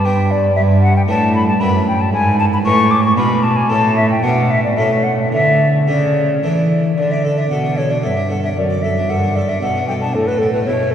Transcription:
0.00 0.54 G2 medium
0.05 0.42 B3 medium
0.05 0.43 D4 medium
0.05 0.43 B4 medium
0.05 0.33 G5 medium
0.31 0.55 D5 medium
0.56 1.05 G2 medium
0.56 0.62 E5 loud
0.82 0.95 F#5 loud
0.97 1.02 G5 medium
1.08 1.56 A2 medium
1.08 1.60 A2 medium
1.08 1.46 D4 soft
1.08 1.46 E4 medium
1.08 1.46 B4 medium
1.08 1.34 A5 loud
1.35 1.47 B5 loud
1.48 1.62 A5 medium
1.60 2.12 F#2 medium
1.60 2.09 F#2 medium
1.60 1.98 D4 medium
1.60 1.99 E4 medium
1.60 1.99 B4 medium
1.60 1.87 B5 loud
1.88 2.03 G5 medium
2.01 2.13 A5 medium
2.13 2.64 G#2 medium
2.13 2.61 G#2 medium
2.13 2.38 G#5 loud
2.40 2.45 A5 loud
2.53 2.59 B5 medium
2.65 3.13 A2 medium
2.65 3.18 A2 medium
2.65 3.02 D4 medium
2.65 3.03 F4 medium
2.65 3.03 B4 medium
2.65 2.92 C#6 loud
2.91 3.03 D6 loud
3.04 3.16 C#6 loud
3.17 3.69 B2 medium
3.17 3.65 B2 medium
3.17 3.55 D4 soft
3.17 3.55 F4 medium
3.17 3.55 B4 medium
3.17 3.45 B5 loud
3.43 3.58 A5 loud
3.56 3.71 G#5 loud
3.69 4.22 A2 medium
3.69 4.19 A2 medium
3.69 4.19 C#4 medium
3.69 4.19 E4 medium
3.69 4.19 A4 medium
3.69 3.96 A5 loud
3.97 4.09 E5 medium
4.10 4.25 G5 medium
4.22 4.75 B2 medium
4.22 4.73 B2 medium
4.22 4.72 B3 medium
4.22 4.73 D4 medium
4.22 4.73 D5 medium
4.22 4.52 F#5 medium
4.50 4.63 E5 medium
4.64 4.79 D5 medium
4.77 5.30 A2 medium
4.77 5.28 A2 medium
4.77 5.28 C#4 soft
4.77 5.28 A4 soft
4.77 5.05 E5 medium
5.04 5.17 F#5 medium
5.19 5.32 E5 medium
5.32 5.86 D3 medium
5.32 5.84 D3 medium
5.32 5.68 E5 loud
5.88 6.39 C#3 medium
5.88 6.42 C#3 medium
5.88 6.28 D4 soft
5.88 6.28 A4 soft
5.88 6.67 D5 medium
6.43 6.96 E3 medium
6.43 6.94 E3 medium
6.43 6.82 D4 soft
6.43 6.83 A4 medium
6.97 7.47 D3 medium
6.97 7.47 D3 soft
6.97 7.13 D5 medium
7.11 7.25 D5 soft
7.11 7.25 E5 medium
7.24 7.38 A4 soft
7.24 7.39 D5 medium
7.38 7.51 D4 soft
7.38 7.49 E5 medium
7.50 8.06 B2 medium
7.50 8.00 B2 soft
7.50 7.65 A4 soft
7.50 7.79 F#5 medium
7.64 7.78 D4 soft
7.77 7.91 A4 soft
7.77 7.93 C#5 medium
7.90 8.04 D4 soft
7.90 8.02 D5 medium
8.03 8.52 G2 soft
8.03 8.56 G2 medium
8.03 8.17 A4 soft
8.03 8.29 E5 medium
8.17 8.30 D4 soft
8.30 8.44 A4 soft
8.30 8.43 F#5 medium
8.43 8.56 D4 soft
8.43 8.49 E5 medium
8.57 9.08 F#2 medium
8.57 9.06 F#2 soft
8.57 8.84 D5 medium
8.70 8.84 D5 soft
8.82 8.97 A4 soft
8.82 9.11 E5 medium
8.98 9.11 D4 soft
9.09 9.61 G2 medium
9.09 9.59 G2 soft
9.09 9.24 A4 soft
9.09 9.37 F#5 medium
9.23 9.37 D4 soft
9.36 9.50 A4 soft
9.36 9.50 D5 medium
9.49 9.63 D4 soft
9.49 9.61 E5 medium
9.62 10.16 B2 medium
9.62 10.11 B2 soft
9.62 9.76 A4 soft
9.62 9.87 F#5 medium
9.76 9.89 D4 soft
9.88 10.03 A4 soft
9.88 9.94 G5 medium
10.01 10.15 D4 soft
10.01 10.16 A5 medium
10.14 10.68 A2 medium
10.14 10.63 A2 soft
10.14 10.29 A4 medium
10.27 10.42 A4 soft
10.27 10.40 B4 medium
10.38 10.55 E4 soft
10.38 10.52 A4 medium
10.53 10.68 A3 soft
10.53 10.64 B4 medium
10.65 10.95 B2 medium
10.65 10.95 B2 soft
10.65 10.81 E4 soft
10.65 10.92 C#5 medium
10.80 10.94 A3 soft
10.91 10.95 A4 medium

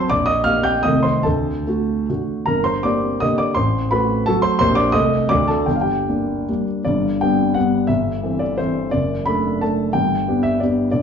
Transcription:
0.00 0.10 C6 medium
0.10 0.45 A#1 medium
0.10 0.26 D5 medium
0.10 0.27 D6 loud
0.26 0.44 D#5 medium
0.26 0.45 D#6 loud
0.44 0.81 A#3 soft
0.44 0.81 G4 soft
0.44 0.63 F5 medium
0.44 0.64 F6 medium
0.63 0.83 G5 medium
0.63 0.84 G6 medium
0.83 1.23 C2 medium
0.83 1.21 D#3 soft
0.83 1.21 A3 soft
0.83 1.21 A4 soft
0.83 1.03 D#5 medium
0.83 1.03 D#6 medium
1.03 1.23 C5 medium
1.03 1.24 C6 medium
1.23 1.66 D2 medium
1.23 2.05 A4 medium
1.23 2.08 A5 medium
1.67 2.05 A3 soft
1.67 2.06 F#4 soft
2.10 2.45 D3 soft
2.10 2.45 A3 soft
2.10 2.45 F#4 soft
2.46 2.84 G1 soft
2.46 2.65 A#4 medium
2.46 2.65 A#5 medium
2.64 2.84 C5 medium
2.64 2.84 C6 medium
2.83 3.18 A#3 soft
2.83 3.19 G4 soft
2.83 3.20 D5 medium
2.83 3.21 D6 medium
3.20 3.53 D3 soft
3.20 3.53 A#3 soft
3.20 3.54 G4 soft
3.20 3.38 D#5 medium
3.20 3.39 D#6 medium
3.38 3.55 D5 medium
3.38 3.56 D6 medium
3.55 3.91 A1 medium
3.55 3.90 C5 medium
3.55 3.91 C6 medium
3.91 4.24 A3 soft
3.91 4.24 F#4 medium
3.91 4.25 B4 medium
3.91 4.27 B5 medium
4.26 4.57 F#3 soft
4.26 4.57 A3 soft
4.26 4.57 F#4 medium
4.26 4.43 A4 medium
4.26 4.43 A5 medium
4.42 4.58 C5 medium
4.42 4.57 C6 medium
4.59 4.93 A#1 medium
4.59 4.91 A#3 soft
4.59 4.91 D4 medium
4.59 4.91 G4 medium
4.59 4.75 C5 medium
4.59 4.76 C6 loud
4.75 4.93 D5 medium
4.75 4.93 D6 loud
4.92 5.29 C2 medium
4.92 5.26 A3 soft
4.92 5.27 C4 soft
4.92 5.27 A4 soft
4.92 5.27 D#5 medium
4.92 5.29 D#6 loud
5.29 5.67 D2 medium
5.29 5.64 A3 soft
5.29 5.64 F#4 soft
5.29 5.47 D5 medium
5.29 5.48 D6 loud
5.48 5.67 A4 medium
5.48 5.67 A5 medium
5.66 6.06 G1 medium
5.66 5.74 G5 medium
5.75 5.83 F5 medium
5.81 6.64 G4 medium
5.81 6.67 G5 medium
6.09 6.45 A#3 soft
6.09 6.45 D4 soft
6.49 6.82 G3 soft
6.49 6.82 A#3 soft
6.49 6.82 D4 soft
6.85 7.86 G1 medium
6.85 7.86 G2 soft
6.85 7.20 D5 medium
7.21 7.53 G3 soft
7.21 7.54 B3 soft
7.21 7.54 D4 soft
7.21 7.56 G5 medium
7.54 7.86 G3 soft
7.54 7.87 B3 soft
7.54 7.86 D4 soft
7.54 7.88 F#5 medium
7.87 8.89 G1 medium
7.87 8.89 G2 soft
7.87 8.41 E5 medium
8.23 8.55 E3 soft
8.23 8.55 C4 soft
8.23 8.55 A4 soft
8.39 8.58 D5 medium
8.58 8.89 E3 soft
8.58 8.89 C4 soft
8.58 8.89 A4 soft
8.58 8.92 C5 medium
8.91 9.91 F#1 medium
8.91 9.91 F#2 medium
8.91 9.26 D5 medium
9.26 9.58 A3 soft
9.26 9.59 D4 soft
9.26 9.59 A4 soft
9.26 9.61 B5 medium
9.61 9.91 A3 soft
9.61 9.91 D4 soft
9.61 9.91 A4 soft
9.61 9.94 A5 medium
9.93 10.90 G1 medium
9.93 10.89 G2 soft
9.93 10.44 G5 medium
10.28 10.58 B3 soft
10.28 10.58 D4 soft
10.28 10.58 G4 soft
10.43 10.60 E5 medium
10.60 10.89 B3 soft
10.60 10.90 D4 soft
10.60 10.90 G4 soft
10.60 10.90 D5 medium
10.91 11.02 A#0 medium
10.91 11.02 A#1 medium
10.91 11.02 D5 medium

